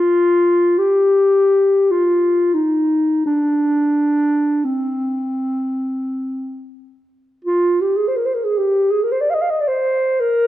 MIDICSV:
0, 0, Header, 1, 2, 480
1, 0, Start_track
1, 0, Tempo, 1119403
1, 826, Tempo, 1376147
1, 1301, Time_signature, 3, 2, 24, 8
1, 1786, Tempo, 1265823
1, 2266, Tempo, 1515152
1, 2746, Tempo, 1140684
1, 3226, Tempo, 1077199
1, 4059, End_track
2, 0, Start_track
2, 0, Title_t, "Clarinet"
2, 0, Program_c, 0, 71
2, 0, Note_on_c, 0, 65, 55
2, 335, Note_on_c, 0, 67, 49
2, 341, Note_off_c, 0, 65, 0
2, 819, Note_on_c, 0, 65, 47
2, 825, Note_off_c, 0, 67, 0
2, 1041, Note_on_c, 0, 63, 47
2, 1046, Note_off_c, 0, 65, 0
2, 1289, Note_off_c, 0, 63, 0
2, 1291, Note_on_c, 0, 62, 47
2, 1776, Note_on_c, 0, 60, 35
2, 1781, Note_off_c, 0, 62, 0
2, 2506, Note_off_c, 0, 60, 0
2, 2742, Note_on_c, 0, 65, 46
2, 2895, Note_on_c, 0, 67, 42
2, 2901, Note_off_c, 0, 65, 0
2, 2959, Note_on_c, 0, 68, 37
2, 2965, Note_off_c, 0, 67, 0
2, 3006, Note_on_c, 0, 72, 40
2, 3013, Note_off_c, 0, 68, 0
2, 3044, Note_on_c, 0, 70, 39
2, 3050, Note_off_c, 0, 72, 0
2, 3081, Note_on_c, 0, 72, 38
2, 3087, Note_off_c, 0, 70, 0
2, 3117, Note_on_c, 0, 70, 38
2, 3124, Note_off_c, 0, 72, 0
2, 3159, Note_on_c, 0, 68, 42
2, 3165, Note_off_c, 0, 70, 0
2, 3214, Note_on_c, 0, 67, 49
2, 3220, Note_off_c, 0, 68, 0
2, 3363, Note_on_c, 0, 68, 39
2, 3369, Note_off_c, 0, 67, 0
2, 3420, Note_on_c, 0, 70, 36
2, 3427, Note_off_c, 0, 68, 0
2, 3457, Note_on_c, 0, 72, 40
2, 3464, Note_off_c, 0, 70, 0
2, 3496, Note_on_c, 0, 74, 37
2, 3503, Note_off_c, 0, 72, 0
2, 3538, Note_on_c, 0, 77, 43
2, 3545, Note_off_c, 0, 74, 0
2, 3556, Note_on_c, 0, 75, 38
2, 3563, Note_off_c, 0, 77, 0
2, 3590, Note_on_c, 0, 77, 37
2, 3596, Note_off_c, 0, 75, 0
2, 3627, Note_on_c, 0, 75, 38
2, 3634, Note_off_c, 0, 77, 0
2, 3674, Note_on_c, 0, 74, 40
2, 3681, Note_off_c, 0, 75, 0
2, 3705, Note_on_c, 0, 72, 48
2, 3712, Note_off_c, 0, 74, 0
2, 3939, Note_on_c, 0, 70, 53
2, 3945, Note_off_c, 0, 72, 0
2, 4059, Note_off_c, 0, 70, 0
2, 4059, End_track
0, 0, End_of_file